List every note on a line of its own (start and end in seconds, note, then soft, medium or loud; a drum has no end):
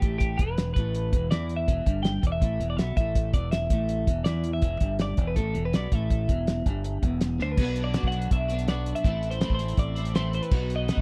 0.00 0.36 A1 medium
0.00 0.39 A2 medium
0.00 0.17 G4 medium
0.00 kick loud
0.00 closed hi-hat medium
0.18 0.39 G4 medium
0.18 kick medium
0.18 closed hi-hat medium
0.38 0.73 E1 medium
0.38 0.76 E2 medium
0.38 0.73 B4 medium
0.38 kick loud
0.38 closed hi-hat medium
0.58 snare loud
0.58 closed hi-hat medium
0.74 1.11 A1 medium
0.74 1.13 A2 medium
0.74 1.30 B4 medium
0.74 kick loud
0.74 closed hi-hat medium
0.95 closed hi-hat medium
1.12 1.30 E1 medium
1.12 1.31 E2 medium
1.12 kick loud
1.12 closed hi-hat medium
1.31 1.66 E2 medium
1.31 1.67 E3 medium
1.31 1.56 D5 medium
1.31 snare loud
1.31 closed hi-hat medium
1.49 closed hi-hat medium
1.56 2.02 E5 medium
1.68 1.85 E1 medium
1.68 1.86 E2 loud
1.68 kick medium
1.68 closed hi-hat medium
1.86 2.20 G1 medium
1.86 2.22 G2 medium
1.86 kick loud
1.86 closed hi-hat medium
2.03 2.25 G5 medium
2.03 snare loud
2.03 closed hi-hat medium
2.22 2.41 E1 medium
2.22 2.41 E2 medium
2.22 kick medium
2.22 closed hi-hat medium
2.27 2.32 D5 medium
2.32 2.70 E5 medium
2.41 2.59 A1 medium
2.41 2.59 A2 medium
2.41 kick loud
2.41 closed hi-hat medium
2.60 2.77 E1 medium
2.60 2.78 E2 medium
2.60 closed hi-hat medium
2.70 2.77 D5 medium
2.77 2.95 B1 medium
2.77 2.97 B2 medium
2.77 2.96 E5 medium
2.77 snare loud
2.77 closed hi-hat medium
2.96 3.31 A1 medium
2.96 3.34 A2 medium
2.96 3.33 E5 medium
2.96 kick loud
2.96 closed hi-hat medium
3.15 kick medium
3.15 closed hi-hat medium
3.33 3.68 E1 medium
3.33 3.71 E2 medium
3.33 3.51 D5 medium
3.33 kick loud
3.33 closed hi-hat medium
3.51 4.24 E5 medium
3.51 snare loud
3.51 closed hi-hat medium
3.70 4.05 A1 medium
3.70 4.08 A2 medium
3.70 kick loud
3.70 closed hi-hat medium
3.89 closed hi-hat medium
4.07 4.25 E1 medium
4.07 4.26 E2 medium
4.07 kick medium
4.07 closed hi-hat medium
4.24 4.60 E2 medium
4.24 4.63 E3 medium
4.24 4.53 D5 medium
4.24 snare loud
4.24 closed hi-hat medium
4.44 closed hi-hat medium
4.53 4.97 E5 medium
4.62 4.80 E1 medium
4.62 4.80 E2 loud
4.62 kick loud
4.62 closed hi-hat medium
4.80 5.15 G1 medium
4.80 5.18 G2 medium
4.80 kick loud
4.80 closed hi-hat medium
4.99 5.29 D5 medium
4.99 snare loud
4.99 closed hi-hat medium
5.17 5.35 E1 medium
5.17 5.37 E2 medium
5.17 kick medium
5.17 closed hi-hat medium
5.28 5.36 B4 medium
5.36 5.54 A1 medium
5.36 5.54 A2 loud
5.36 5.65 A4 medium
5.36 kick medium
5.36 closed hi-hat medium
5.54 5.73 E1 medium
5.54 5.72 E2 medium
5.54 closed hi-hat medium
5.65 5.74 B4 medium
5.73 5.91 B1 medium
5.73 5.92 B2 loud
5.73 5.93 D5 medium
5.73 snare loud
5.73 closed hi-hat medium
5.92 6.26 A1 medium
5.92 6.29 A2 medium
5.92 7.22 E5 medium
5.92 kick loud
5.92 closed hi-hat medium
6.10 kick medium
6.10 closed hi-hat medium
6.29 6.63 E1 medium
6.29 6.65 E2 loud
6.29 kick loud
6.29 closed hi-hat medium
6.47 snare loud
6.47 closed hi-hat medium
6.66 7.00 G1 medium
6.66 7.03 G2 medium
6.66 kick medium
6.66 closed hi-hat medium
6.84 closed hi-hat medium
7.02 7.37 E1 medium
7.02 7.40 E2 medium
7.02 kick loud
7.02 closed hi-hat medium
7.21 snare loud
7.21 closed hi-hat medium
7.39 7.56 D2 medium
7.39 7.58 D3 medium
7.39 7.52 C5 medium
7.39 snare medium
7.52 7.84 B4 medium
7.57 7.96 B1 medium
7.57 8.13 B2 medium
7.57 7.93 F#3 loud
7.57 7.94 B3 medium
7.57 7.95 D4 loud
7.57 kick loud
7.57 crash loud
7.62 7.96 F#4 loud
7.76 closed hi-hat medium
7.84 8.07 D5 loud
7.94 8.31 F#3 medium
7.94 8.13 B3 medium
7.94 8.12 D4 medium
7.94 8.10 F#4 medium
7.94 snare loud
7.94 closed hi-hat medium
8.03 8.27 B1 medium
8.03 kick medium
8.08 8.47 F#4 medium
8.08 8.32 F#5 loud
8.12 8.51 B3 medium
8.12 8.49 D4 medium
8.12 closed hi-hat medium
8.22 closed hi-hat medium
8.31 8.93 B1 medium
8.31 8.66 E5 medium
8.31 kick loud
8.31 closed hi-hat medium
8.48 8.68 B3 medium
8.48 8.69 D4 medium
8.48 8.70 F#4 medium
8.48 closed hi-hat medium
8.59 closed hi-hat medium
8.67 9.03 B2 medium
8.67 9.04 F#3 medium
8.67 9.04 B3 medium
8.67 9.05 D4 medium
8.67 8.95 D5 medium
8.67 snare loud
8.67 closed hi-hat medium
8.71 9.05 F#4 loud
8.86 closed hi-hat medium
8.95 9.30 E5 loud
8.95 closed hi-hat medium
9.04 9.43 A1 loud
9.04 9.60 A2 medium
9.04 9.40 E3 medium
9.04 9.41 A3 loud
9.04 9.43 C4 medium
9.04 9.44 E4 loud
9.04 kick loud
9.04 closed hi-hat medium
9.23 closed hi-hat medium
9.31 9.53 C5 medium
9.31 closed hi-hat medium
9.41 9.78 E3 medium
9.41 9.60 A3 medium
9.41 9.59 C4 medium
9.41 snare loud
9.41 closed hi-hat medium
9.45 9.57 E4 medium
9.50 9.73 A1 medium
9.50 kick medium
9.54 9.94 E4 medium
9.54 9.79 C5 medium
9.59 9.98 A3 medium
9.59 9.96 C4 medium
9.59 closed hi-hat medium
9.68 closed hi-hat medium
9.77 10.39 A1 medium
9.77 10.15 D5 medium
9.77 kick loud
9.77 closed hi-hat medium
9.95 10.15 A3 medium
9.95 10.15 C4 medium
9.95 10.16 E4 medium
9.95 closed hi-hat medium
10.05 closed hi-hat medium
10.14 10.50 A2 medium
10.14 10.51 E3 medium
10.14 10.51 A3 medium
10.14 10.52 C4 loud
10.14 10.52 E4 medium
10.14 10.33 C5 medium
10.14 snare loud
10.14 closed hi-hat medium
10.33 10.43 C5 medium
10.33 closed hi-hat medium
10.43 10.75 B4 medium
10.43 closed hi-hat medium
10.51 10.90 B1 loud
10.51 11.02 B2 medium
10.51 10.88 F#3 medium
10.51 10.89 B3 medium
10.51 10.90 D#4 loud
10.51 10.92 F#4 loud
10.51 kick loud
10.51 crash medium
10.70 closed hi-hat medium
10.76 10.99 D#5 medium
10.88 11.02 F#3 medium
10.88 11.02 B3 medium
10.88 11.02 D#4 medium
10.88 11.02 F#4 medium
10.88 snare loud
10.88 closed hi-hat medium
10.97 11.02 B1 medium
10.97 kick medium